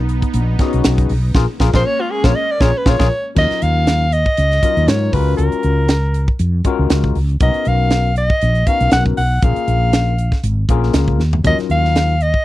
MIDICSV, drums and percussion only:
0, 0, Header, 1, 2, 480
1, 0, Start_track
1, 0, Key_signature, -6, "minor"
1, 0, Tempo, 504202
1, 1291, Time_signature, 4, 2, 24, 8
1, 11851, End_track
2, 0, Start_track
2, 0, Title_t, "Drums"
2, 84, Note_on_c, 9, 42, 56
2, 179, Note_off_c, 9, 42, 0
2, 212, Note_on_c, 9, 42, 36
2, 213, Note_on_c, 9, 36, 72
2, 307, Note_off_c, 9, 42, 0
2, 308, Note_off_c, 9, 36, 0
2, 319, Note_on_c, 9, 42, 87
2, 415, Note_off_c, 9, 42, 0
2, 560, Note_on_c, 9, 42, 58
2, 563, Note_on_c, 9, 36, 81
2, 565, Note_on_c, 9, 38, 33
2, 656, Note_off_c, 9, 42, 0
2, 658, Note_off_c, 9, 36, 0
2, 660, Note_off_c, 9, 38, 0
2, 694, Note_on_c, 9, 42, 44
2, 789, Note_off_c, 9, 42, 0
2, 799, Note_on_c, 9, 42, 92
2, 804, Note_on_c, 9, 38, 125
2, 895, Note_off_c, 9, 42, 0
2, 899, Note_off_c, 9, 38, 0
2, 933, Note_on_c, 9, 42, 43
2, 934, Note_on_c, 9, 36, 82
2, 1029, Note_off_c, 9, 36, 0
2, 1029, Note_off_c, 9, 42, 0
2, 1041, Note_on_c, 9, 46, 76
2, 1136, Note_off_c, 9, 46, 0
2, 1281, Note_on_c, 9, 36, 90
2, 1284, Note_on_c, 9, 38, 80
2, 1376, Note_off_c, 9, 36, 0
2, 1379, Note_off_c, 9, 38, 0
2, 1521, Note_on_c, 9, 36, 78
2, 1526, Note_on_c, 9, 38, 83
2, 1617, Note_off_c, 9, 36, 0
2, 1621, Note_off_c, 9, 38, 0
2, 1652, Note_on_c, 9, 36, 88
2, 1656, Note_on_c, 9, 38, 89
2, 1747, Note_off_c, 9, 36, 0
2, 1751, Note_off_c, 9, 38, 0
2, 2132, Note_on_c, 9, 36, 79
2, 2133, Note_on_c, 9, 38, 99
2, 2227, Note_off_c, 9, 36, 0
2, 2229, Note_off_c, 9, 38, 0
2, 2481, Note_on_c, 9, 36, 93
2, 2483, Note_on_c, 9, 38, 93
2, 2576, Note_off_c, 9, 36, 0
2, 2579, Note_off_c, 9, 38, 0
2, 2721, Note_on_c, 9, 36, 89
2, 2724, Note_on_c, 9, 38, 99
2, 2816, Note_off_c, 9, 36, 0
2, 2819, Note_off_c, 9, 38, 0
2, 2853, Note_on_c, 9, 36, 97
2, 2857, Note_on_c, 9, 38, 93
2, 2948, Note_off_c, 9, 36, 0
2, 2952, Note_off_c, 9, 38, 0
2, 3202, Note_on_c, 9, 49, 80
2, 3203, Note_on_c, 9, 36, 87
2, 3297, Note_off_c, 9, 49, 0
2, 3299, Note_off_c, 9, 36, 0
2, 3338, Note_on_c, 9, 42, 31
2, 3343, Note_on_c, 9, 38, 35
2, 3434, Note_off_c, 9, 42, 0
2, 3438, Note_off_c, 9, 38, 0
2, 3444, Note_on_c, 9, 42, 57
2, 3539, Note_off_c, 9, 42, 0
2, 3683, Note_on_c, 9, 42, 67
2, 3688, Note_on_c, 9, 38, 94
2, 3779, Note_off_c, 9, 42, 0
2, 3783, Note_off_c, 9, 38, 0
2, 3925, Note_on_c, 9, 42, 51
2, 4020, Note_off_c, 9, 42, 0
2, 4055, Note_on_c, 9, 36, 74
2, 4150, Note_off_c, 9, 36, 0
2, 4163, Note_on_c, 9, 42, 82
2, 4259, Note_off_c, 9, 42, 0
2, 4298, Note_on_c, 9, 42, 39
2, 4303, Note_on_c, 9, 38, 31
2, 4393, Note_off_c, 9, 42, 0
2, 4398, Note_off_c, 9, 38, 0
2, 4405, Note_on_c, 9, 36, 77
2, 4405, Note_on_c, 9, 42, 58
2, 4501, Note_off_c, 9, 36, 0
2, 4501, Note_off_c, 9, 42, 0
2, 4541, Note_on_c, 9, 42, 39
2, 4636, Note_off_c, 9, 42, 0
2, 4645, Note_on_c, 9, 42, 83
2, 4650, Note_on_c, 9, 38, 107
2, 4740, Note_off_c, 9, 42, 0
2, 4745, Note_off_c, 9, 38, 0
2, 4882, Note_on_c, 9, 46, 72
2, 4885, Note_on_c, 9, 36, 85
2, 4977, Note_off_c, 9, 46, 0
2, 4980, Note_off_c, 9, 36, 0
2, 5124, Note_on_c, 9, 42, 77
2, 5219, Note_off_c, 9, 42, 0
2, 5256, Note_on_c, 9, 42, 40
2, 5351, Note_off_c, 9, 42, 0
2, 5361, Note_on_c, 9, 42, 51
2, 5456, Note_off_c, 9, 42, 0
2, 5602, Note_on_c, 9, 42, 83
2, 5607, Note_on_c, 9, 38, 96
2, 5697, Note_off_c, 9, 42, 0
2, 5702, Note_off_c, 9, 38, 0
2, 5847, Note_on_c, 9, 42, 57
2, 5942, Note_off_c, 9, 42, 0
2, 5978, Note_on_c, 9, 36, 79
2, 6073, Note_off_c, 9, 36, 0
2, 6085, Note_on_c, 9, 42, 80
2, 6181, Note_off_c, 9, 42, 0
2, 6325, Note_on_c, 9, 42, 56
2, 6327, Note_on_c, 9, 36, 68
2, 6420, Note_off_c, 9, 42, 0
2, 6423, Note_off_c, 9, 36, 0
2, 6567, Note_on_c, 9, 42, 76
2, 6572, Note_on_c, 9, 38, 110
2, 6662, Note_off_c, 9, 42, 0
2, 6667, Note_off_c, 9, 38, 0
2, 6700, Note_on_c, 9, 36, 82
2, 6796, Note_off_c, 9, 36, 0
2, 6810, Note_on_c, 9, 46, 60
2, 6905, Note_off_c, 9, 46, 0
2, 6941, Note_on_c, 9, 42, 34
2, 7036, Note_off_c, 9, 42, 0
2, 7046, Note_on_c, 9, 42, 63
2, 7050, Note_on_c, 9, 36, 103
2, 7141, Note_off_c, 9, 42, 0
2, 7145, Note_off_c, 9, 36, 0
2, 7178, Note_on_c, 9, 42, 35
2, 7273, Note_off_c, 9, 42, 0
2, 7284, Note_on_c, 9, 42, 51
2, 7379, Note_off_c, 9, 42, 0
2, 7524, Note_on_c, 9, 42, 62
2, 7529, Note_on_c, 9, 38, 86
2, 7619, Note_off_c, 9, 42, 0
2, 7624, Note_off_c, 9, 38, 0
2, 7767, Note_on_c, 9, 42, 54
2, 7863, Note_off_c, 9, 42, 0
2, 7900, Note_on_c, 9, 36, 80
2, 7996, Note_off_c, 9, 36, 0
2, 8010, Note_on_c, 9, 42, 72
2, 8105, Note_off_c, 9, 42, 0
2, 8138, Note_on_c, 9, 42, 37
2, 8234, Note_off_c, 9, 42, 0
2, 8249, Note_on_c, 9, 42, 54
2, 8251, Note_on_c, 9, 36, 81
2, 8345, Note_off_c, 9, 42, 0
2, 8346, Note_off_c, 9, 36, 0
2, 8381, Note_on_c, 9, 42, 36
2, 8476, Note_off_c, 9, 42, 0
2, 8485, Note_on_c, 9, 42, 81
2, 8490, Note_on_c, 9, 38, 113
2, 8580, Note_off_c, 9, 42, 0
2, 8585, Note_off_c, 9, 38, 0
2, 8621, Note_on_c, 9, 36, 87
2, 8717, Note_off_c, 9, 36, 0
2, 8731, Note_on_c, 9, 46, 69
2, 8827, Note_off_c, 9, 46, 0
2, 8969, Note_on_c, 9, 42, 75
2, 8972, Note_on_c, 9, 36, 92
2, 9064, Note_off_c, 9, 42, 0
2, 9068, Note_off_c, 9, 36, 0
2, 9103, Note_on_c, 9, 42, 38
2, 9198, Note_off_c, 9, 42, 0
2, 9212, Note_on_c, 9, 42, 57
2, 9308, Note_off_c, 9, 42, 0
2, 9453, Note_on_c, 9, 42, 81
2, 9457, Note_on_c, 9, 38, 104
2, 9548, Note_off_c, 9, 42, 0
2, 9553, Note_off_c, 9, 38, 0
2, 9695, Note_on_c, 9, 42, 61
2, 9791, Note_off_c, 9, 42, 0
2, 9824, Note_on_c, 9, 36, 78
2, 9829, Note_on_c, 9, 38, 34
2, 9919, Note_off_c, 9, 36, 0
2, 9924, Note_off_c, 9, 38, 0
2, 9934, Note_on_c, 9, 42, 81
2, 10030, Note_off_c, 9, 42, 0
2, 10174, Note_on_c, 9, 36, 82
2, 10174, Note_on_c, 9, 42, 57
2, 10269, Note_off_c, 9, 42, 0
2, 10270, Note_off_c, 9, 36, 0
2, 10311, Note_on_c, 9, 38, 36
2, 10406, Note_off_c, 9, 38, 0
2, 10410, Note_on_c, 9, 42, 84
2, 10414, Note_on_c, 9, 38, 109
2, 10505, Note_off_c, 9, 42, 0
2, 10510, Note_off_c, 9, 38, 0
2, 10545, Note_on_c, 9, 36, 80
2, 10640, Note_off_c, 9, 36, 0
2, 10660, Note_on_c, 9, 38, 53
2, 10755, Note_off_c, 9, 38, 0
2, 10786, Note_on_c, 9, 43, 71
2, 10881, Note_off_c, 9, 43, 0
2, 10895, Note_on_c, 9, 36, 103
2, 10895, Note_on_c, 9, 42, 65
2, 10990, Note_off_c, 9, 36, 0
2, 10991, Note_off_c, 9, 42, 0
2, 11029, Note_on_c, 9, 42, 35
2, 11034, Note_on_c, 9, 38, 32
2, 11125, Note_off_c, 9, 42, 0
2, 11129, Note_off_c, 9, 38, 0
2, 11136, Note_on_c, 9, 42, 49
2, 11231, Note_off_c, 9, 42, 0
2, 11279, Note_on_c, 9, 38, 30
2, 11374, Note_off_c, 9, 38, 0
2, 11382, Note_on_c, 9, 42, 72
2, 11386, Note_on_c, 9, 38, 86
2, 11477, Note_off_c, 9, 42, 0
2, 11482, Note_off_c, 9, 38, 0
2, 11619, Note_on_c, 9, 42, 49
2, 11715, Note_off_c, 9, 42, 0
2, 11746, Note_on_c, 9, 36, 73
2, 11841, Note_off_c, 9, 36, 0
2, 11851, End_track
0, 0, End_of_file